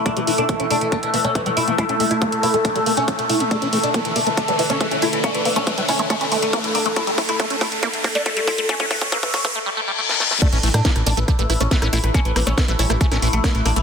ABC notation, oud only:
X:1
M:4/4
L:1/16
Q:1/4=139
K:A
V:1 name="Oud"
D E, E, D E, E, D E, D E, E, C E, E, E E, | E A, A, E A, A, E A, D A, A, C A, A, A, A, | D E, E, D E, E, D E, D E, E, C E, E, E E, | C E, E, C E, E, C E, C E, E, A, E, E, D E, |
E A, A, E A, A, E A, E A, A, D A, A, =F A, | C E, E, C E, E, C E, z8 | D E, E, D E, E, D E, D E, E, C E, E, E E, | C E, E, C E, E, C E, C E, E, A, E, E, D E, |]